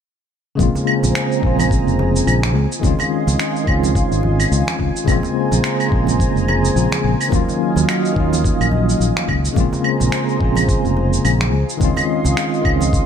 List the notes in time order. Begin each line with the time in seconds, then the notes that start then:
0.55 A#1 C#3 G#3 A#3 C4 G#4 G#5 A#5, kick
0.59 C4 F4, high conga, shaker
0.75 low conga, shaker
0.87 claves
1.03 A#1, high conga, low conga, shaker
1.15 finger snap, shaker
1.32 shaker
1.39 A#1 C#3 G#3 A#3, kick
1.45 C4 F4
1.59 high conga, claves, shaker
1.71 kick, shaker
1.87 F1, shaker
1.99 high conga, low conga
2.16 shaker
2.27 A#1, claves, shaker
2.43 finger snap, high conga, shaker
2.55 C#2 F4 D#5 C6
2.72 shaker
2.80 C#2 D#3 G#3 C4, kick, high conga
2.84 C#4 F4, shaker
2.99 low conga, claves, shaker
3.27 C#2, high conga, low conga, shaker
3.40 finger snap, shaker
3.56 shaker
3.64 C#2 D#3 G#3 C4, kick, claves
3.69 C#4 F4
3.83 high conga, shaker
3.95 kick, shaker
4.12 G#1, shaker
4.23 high conga, low conga
4.40 claves, shaker
4.52 C#2, shaker
4.67 finger snap, high conga, shaker
4.80 C#2, kick
4.96 shaker
5.04 A#1 C#3 G#3 A#3 G#4 C5 A#5, kick, high conga, claves, shaker
5.10 C4 F4
5.23 low conga, shaker
5.51 A#1, high conga, low conga, shaker
5.64 finger snap, shaker
5.80 claves, shaker
5.88 A#1 C#3 G#3 A#3, kick
5.94 C4 F4
6.07 high conga, shaker
6.20 kick, shaker
6.36 F1, shaker
6.48 high conga, low conga, claves
6.65 shaker
6.76 A#1, shaker
6.92 finger snap, high conga, shaker
7.04 A#1
7.21 claves, shaker
7.28 D#2 D#3 F#3 A#3 D#5 F5, kick, high conga
7.33 C#4 F4, shaker
7.48 low conga, shaker
7.76 D#2, high conga, low conga, shaker
7.89 finger snap, claves, shaker
8.05 shaker
8.13 D#2 D#3 F#3 A#3, kick
8.18 C#4 F4
8.33 high conga, shaker
8.44 kick, shaker
8.60 A#1, claves, shaker
8.71 high conga, low conga
8.89 shaker
9.00 A#1, shaker
9.17 finger snap, high conga, shaker
9.28 C#2, kick, claves
9.45 shaker
9.53 A#1 C#3 G#3 A#3 G#4 C5 A#5, kick, high conga
9.57 C4 F4, shaker
9.73 low conga, shaker
9.84 claves
10.00 A#1, high conga, low conga, shaker
10.12 finger snap, shaker
10.29 shaker
10.37 A#1 C#3 G#3 A#3, kick
10.43 C4 F4
10.56 high conga, claves, shaker
10.69 kick, shaker
10.85 F1, shaker
10.97 high conga, low conga
11.13 shaker
11.25 A#1, claves, shaker
11.41 finger snap, high conga, shaker
11.53 C#2 F4 D#5 C6
11.69 shaker
11.77 C#2 D#3 G#3 C4, kick, high conga, shaker
11.83 C#4 F4
11.96 low conga, claves, shaker
12.24 C#2, high conga, low conga, shaker
12.37 finger snap, shaker
12.54 shaker
12.61 C#2 D#3 G#3 C4, kick, claves
12.67 C#4 F4
12.81 high conga, shaker
12.93 kick, shaker